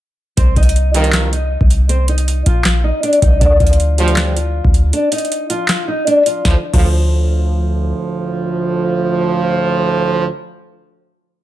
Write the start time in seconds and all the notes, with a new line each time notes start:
0.37 C2 C4 C5, kick, closed hi-hat
0.56 C2 D#4 D#5, kick, closed hi-hat
0.63 closed hi-hat
0.69 closed hi-hat
0.76 closed hi-hat
0.94 C2 G2 D#3 F3 F4, closed hi-hat
1.04 closed hi-hat
1.12 snare, clap, closed hi-hat
1.32 D#4 D#5, closed hi-hat
1.61 C2, kick
1.70 closed hi-hat
1.89 C4 C5, closed hi-hat
2.08 D#4 D#5, closed hi-hat, open hi-hat
2.18 closed hi-hat
2.28 closed hi-hat
2.46 A#1 F3 F4, kick, closed hi-hat
2.64 snare, clap, closed hi-hat
2.84 D#4 D#5
3.03 D4 D5, closed hi-hat
3.13 closed hi-hat
3.22 C2 D#4 D#5, kick, closed hi-hat
3.41 D2 D4 D5, kick, closed hi-hat
3.60 D2 F3 F4, kick, closed hi-hat
3.67 closed hi-hat
3.73 closed hi-hat
3.80 closed hi-hat
3.98 D2 A2 F3 G3 G4, closed hi-hat
4.08 closed hi-hat
4.16 snare, clap, closed hi-hat
4.37 F3 F4, closed hi-hat
4.65 D2, kick
4.74 closed hi-hat
4.93 D4 D5, closed hi-hat
5.12 D#4 D#5, closed hi-hat, open hi-hat
5.18 closed hi-hat
5.25 closed hi-hat
5.32 closed hi-hat
5.50 F3 F4, closed hi-hat
5.68 snare, clap, closed hi-hat
5.88 D#4 D#5
6.07 D4 D5, closed hi-hat
6.26 F3 F4, closed hi-hat
6.45 D2 A2 F3, kick, snare
6.73 D2 A2 F3, kick, crash